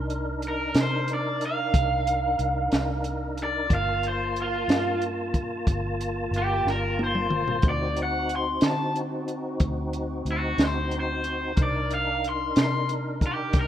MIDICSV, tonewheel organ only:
0, 0, Header, 1, 2, 480
1, 0, Start_track
1, 0, Key_signature, -2, "minor"
1, 0, Tempo, 655738
1, 2708, Time_signature, 12, 3, 24, 8
1, 10009, End_track
2, 0, Start_track
2, 0, Title_t, "Tonewheel organ"
2, 0, Program_c, 0, 16
2, 0, Note_on_c, 0, 62, 57
2, 0, Note_on_c, 0, 63, 60
2, 0, Note_on_c, 0, 70, 60
2, 2687, Note_off_c, 0, 63, 0
2, 2688, Note_off_c, 0, 70, 0
2, 2689, Note_off_c, 0, 62, 0
2, 2697, Note_on_c, 0, 65, 56
2, 2703, Note_on_c, 0, 58, 61
2, 2703, Note_on_c, 0, 81, 59
2, 5554, Note_off_c, 0, 65, 0
2, 5557, Note_off_c, 0, 58, 0
2, 5557, Note_off_c, 0, 81, 0
2, 5581, Note_on_c, 0, 60, 50
2, 5581, Note_on_c, 0, 63, 52
2, 5586, Note_on_c, 0, 66, 57
2, 8435, Note_off_c, 0, 60, 0
2, 8435, Note_off_c, 0, 63, 0
2, 8437, Note_off_c, 0, 66, 0
2, 8456, Note_on_c, 0, 63, 54
2, 8463, Note_on_c, 0, 70, 53
2, 8466, Note_on_c, 0, 62, 56
2, 10009, Note_off_c, 0, 62, 0
2, 10009, Note_off_c, 0, 63, 0
2, 10009, Note_off_c, 0, 70, 0
2, 10009, End_track
0, 0, End_of_file